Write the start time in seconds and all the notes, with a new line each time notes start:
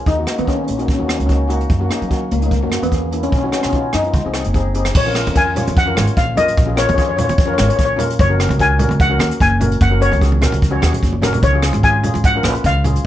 0.06 D#2 D#4, kick, closed hi-hat
0.17 A#3 D#4 F#4
0.25 A#3 D#4 F#4, cross-stick, closed hi-hat
0.38 D#3 B3, closed hi-hat
0.46 A#3 C#4 D#4 G#4, kick, closed hi-hat
0.56 C#4
0.64 C#4, closed hi-hat
0.69 A#1 C#4
0.77 A#3 C#4 D#4 F#4, closed hi-hat
0.86 C#4, kick, closed hi-hat
0.94 A#3 C#4 D#4
0.99 D#2 C#4 F#4
1.06 A#3 C#4 D#4 F#4, cross-stick, closed hi-hat
1.18 C#2 C#4, closed hi-hat
1.26 A#3 C#4 D#4 F#4, kick, closed hi-hat
1.33 C#4
1.48 A#3 D#4 F#4, closed hi-hat
1.61 closed hi-hat
1.70 F#2, kick, closed hi-hat
1.79 A#3 C#4 F#4
1.89 A#3 C#4 D#4, cross-stick, closed hi-hat
2.02 F#3, closed hi-hat
2.09 A#3 C#4 F#4, kick, closed hi-hat
2.31 C#2 A#3, closed hi-hat
2.38 A#3 C#4 D#4, closed hi-hat
2.46 A#3
2.51 A#3, kick, closed hi-hat
2.61 F#2 A#3 C#4 F#4
2.70 A#3 C#4 F#4, cross-stick, closed hi-hat
2.82 E2 B3, closed hi-hat
2.91 A#3 C#4 G#4, kick, closed hi-hat
3.11 A#3 C#4 E4, closed hi-hat
3.23 C#4, closed hi-hat
3.29 B1 C#4, kick, closed hi-hat
3.38 C#4
3.42 B3 C#4 D#4 F#4
3.52 B3 C#4 D#4 F#4, cross-stick, closed hi-hat
3.61 B2 C#4, cross-stick, closed hi-hat
3.69 B3 C#4 D#4, kick, closed hi-hat
3.74 C#4 F4
3.93 F#2 D#4, cross-stick, closed hi-hat
4.03 B3 D#4 F4, closed hi-hat
4.13 C2, kick, closed hi-hat
4.24 C2 C4 D#4 G#4
4.34 C4 D#4 G#4, cross-stick, closed hi-hat
4.44 F#1, closed hi-hat
4.53 C4 D#4 G#4, kick, closed hi-hat
4.74 C4 D#4 G#4, closed hi-hat
4.85 cross-stick, closed hi-hat
4.95 A#1 C#5, kick, crash
5.05 C#4 F4 A#4
5.13 C#4 F4 A#4, cross-stick, closed hi-hat
5.26 F2, closed hi-hat, high conga
5.34 C#4 F4 A#4 G#5, kick, closed hi-hat
5.55 C#4 F4 C#5, closed hi-hat, low conga
5.67 F2, closed hi-hat, high conga
5.77 F#5, kick, closed hi-hat
5.86 C#4 F4 A#4
5.94 G#1 C#4 F4 C#5, cross-stick, closed hi-hat, high conga
6.07 closed hi-hat
6.17 A#1 F5, kick, closed hi-hat
6.35 C#4 F4 A#4 D#5, closed hi-hat, low conga
6.48 closed hi-hat
6.57 A#1, kick, closed hi-hat
6.66 C#4 F4 G#4
6.75 C#4 F4 A#4 C#5, cross-stick, closed hi-hat
6.87 F2 C#5, closed hi-hat, high conga
6.94 C#4 F4 C#5, kick, closed hi-hat
6.99 G#4 C#5
7.09 C#5
7.16 C#4 F4 C#5, closed hi-hat, low conga
7.24 C#5
7.29 F2 C#5, closed hi-hat, high conga
7.38 C#5, kick, closed hi-hat
7.46 C#4 F4 A#4 C#5
7.54 C#4 C#5
7.58 G#1 F4 A#4 C#5, cross-stick, closed hi-hat, high conga
7.69 C#5, closed hi-hat
7.76 A#1 C#5, kick, closed hi-hat
7.85 C#5
7.96 C#4 F4 A#4, closed hi-hat, low conga
8.10 closed hi-hat
8.19 F#1 C#5, kick, closed hi-hat
8.29 C#4 F#4 A#4
8.39 C#4 F#4 A#4, cross-stick, closed hi-hat
8.49 C#2, closed hi-hat, high conga
8.59 C#4 F#4 A#4 G#5, kick, closed hi-hat
8.78 C#4 F#4 A#4, closed hi-hat, low conga
8.89 C#2, closed hi-hat, high conga
9.00 F#5, kick, closed hi-hat
9.09 C#4 F#4 A#4
9.18 D#2 C#4 F#4 A#4, cross-stick, closed hi-hat, high conga
9.31 closed hi-hat
9.40 F#1 G#5, kick, closed hi-hat
9.60 C#4 F#4 A#4, closed hi-hat, low conga
9.72 closed hi-hat
9.81 F#1 F#5, kick, closed hi-hat
9.90 C#4 F#4 A#4
10.00 C#4 F#4 A#4 C#5, closed hi-hat
10.12 C#2, closed hi-hat, high conga
10.20 C#4 F#4 G#4, kick, closed hi-hat
10.32 high conga
10.41 C#4 F#4 A#4, cross-stick, closed hi-hat, high conga, low conga
10.52 C#2, closed hi-hat, high conga
10.62 kick, closed hi-hat
10.71 C#4 F#4 C#5
10.81 D#2 C#4 F#4 G#4, cross-stick, closed hi-hat, high conga
10.93 closed hi-hat, low conga
11.03 F#1, kick, closed hi-hat
11.13 high conga
11.22 C#4 F#4 A#4, cross-stick, closed hi-hat, low conga
11.33 closed hi-hat, low conga
11.42 C#2 C#5, kick, closed hi-hat
11.53 C#4 F4 G#4
11.62 C#4 F4 G#4, cross-stick, closed hi-hat
11.73 G#1, closed hi-hat, high conga
11.83 C#4 F4 G#4 G#5, kick, closed hi-hat
12.03 C#4 F4 G#4, closed hi-hat, low conga
12.14 G#1, closed hi-hat, high conga
12.24 F#5, kick, closed hi-hat
12.35 C#4 F4 A#4
12.43 A#1 C#4 F4 B4, cross-stick, closed hi-hat, high conga
12.54 closed hi-hat
12.64 C#2 F5, kick, closed hi-hat
12.84 C#4 F4 G#4, closed hi-hat, low conga
12.96 closed hi-hat